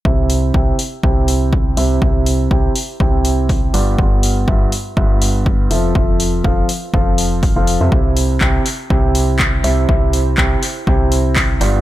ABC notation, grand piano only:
X:1
M:4/4
L:1/16
Q:"Swing 16ths" 1/4=122
K:C
V:1 name="Grand piano"
[C,CEGe]4 [C,CEGg]2 z2 [C,CEGg]6 [C,CEGe]2 | [C,CEG]4 [C,CEGg]2 z2 [C,CEGg]6 [G,,B,FGd]2 | [G,,B,FG]4 [G,,B,FGe]2 z2 [G,,B,FGe]6 [F,CFAe]2 | [F,CFe]4 [F,CFAf]2 z2 [F,CFAf]4- [F,CFAf] [F,CFAf]2 [C,CFAe] |
[C,CEGe]4 [C,CEGg]2 z2 [C,CEGg]6 [C,CEGe]2 | [C,CEGe]4 [C,CEGg]2 z2 [C,CEGg]6 [G,,B,FGd]2 |]